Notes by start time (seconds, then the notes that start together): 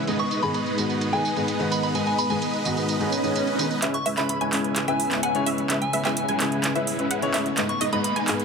0.07 G#2 D#3 G#3 B3 D#4 G#4 B4 D#5, closed hi-hat, tambourine
0.19 C#6, closed hi-hat, tambourine
0.31 closed hi-hat, tambourine
0.42 G#2 D#3 G#3 B3 G#4 B5, closed hi-hat, tambourine
0.54 B5, closed hi-hat, tambourine
0.66 closed hi-hat, tambourine
0.77 G#2 D#3 G#3 B3 F#4, closed hi-hat, tambourine
0.90 closed hi-hat, tambourine
1.01 closed hi-hat, tambourine
1.12 G#2 D#3 G#3 B3 G#4 G#5, closed hi-hat, tambourine
1.25 tambourine
1.36 G#2 D#3 G#3 B3 G#4, closed hi-hat, tambourine
1.48 closed hi-hat, tambourine
1.59 G#2 D#3 G#3 B3 B4, closed hi-hat, tambourine
1.72 B5, closed hi-hat, tambourine
1.83 B5, closed hi-hat, tambourine
1.94 G#2 D#3 G#3 B3 G#4 G#5, closed hi-hat, tambourine
2.07 G#5, closed hi-hat, tambourine
2.18 B5, closed hi-hat, tambourine
2.30 G#2 D#3 G#3 B3 G#4 G#5, closed hi-hat, tambourine
2.42 closed hi-hat, tambourine
2.54 closed hi-hat, tambourine
2.65 G#2 D#3 G#3 B3 F#4, closed hi-hat, tambourine
2.77 closed hi-hat, tambourine
2.89 closed hi-hat, tambourine, swell
3.00 G#2 D#3 G#3 B3 G#4, closed hi-hat, tambourine
3.12 tambourine
3.23 G#2 D#3 G#3 B3 G#4, closed hi-hat, tambourine
3.36 closed hi-hat, tambourine
3.47 closed hi-hat, tambourine
3.58 D#3 G#3 B3 B4, closed hi-hat, tambourine
3.71 closed hi-hat, tambourine
3.82 C#3 G#3 B3 C#4 E4 B4 E5, clap, closed hi-hat, riser
3.94 C#6, closed hi-hat
4.06 G#3 C#4 E4 B4 E5, open hi-hat
4.17 C#3 G#3 C#4 E4 B4 E5 B5, clap, closed hi-hat
4.29 B5, closed hi-hat
4.41 G#3 C#4 E4 B4 G#5, closed hi-hat
4.52 C#3 G#3 C#4 E4 G#4, clap, open hi-hat
4.64 closed hi-hat
4.76 clap, closed hi-hat
4.87 C#3 G#3 C#4 E4 B4 E5 G#5, closed hi-hat
5.00 open hi-hat
5.11 C#3 G#3 C#4 E4 B4, clap, closed hi-hat
5.23 G#3 C#4 E4 B4 F#5 G#5, closed hi-hat
5.34 C#3 G#3 C#4 E4 C#5, closed hi-hat
5.46 G#3 C#4 E4 B4 E5, open hi-hat
5.58 closed hi-hat
5.70 C#3 G#3 C#4 E4 B4 E5, clap, closed hi-hat
5.82 G#5, closed hi-hat
5.93 G#3 C#4 E4 B4 E5, open hi-hat
6.05 C#3 G#3 C#4 E4 B4 E5 G#5, clap, closed hi-hat
6.17 closed hi-hat
6.28 G#3 C#4 E4 B4 G#5, closed hi-hat
6.40 C#3 G#3 C#4 E4 G#4, clap, open hi-hat
6.52 closed hi-hat
6.64 clap, closed hi-hat
6.75 C#3 G#3 C#4 E4 B4 E5, closed hi-hat
6.87 open hi-hat
6.98 C#3 G#3 C#4 E4 B4, closed hi-hat
7.11 G#3 C#4 E4 B4 F#5, closed hi-hat
7.22 C#3 G#3 C#4 E4 C#5, closed hi-hat
7.34 G#3 C#4 E4 B4 E5, clap, open hi-hat
7.46 closed hi-hat
7.57 G#2 G#3 B3 D#4 B4 D#5, clap, closed hi-hat
7.69 C#6, closed hi-hat
7.81 G#3 B3 D#4 B4 D#5, open hi-hat
7.92 G#2 G#3 B3 D#4 B4 D#5 B5, closed hi-hat
8.04 B5, closed hi-hat
8.16 G#3 B3 D#4 B4 G#5, closed hi-hat
8.27 G#2 G#3 B3 D#4 G#4, clap, open hi-hat
8.40 closed hi-hat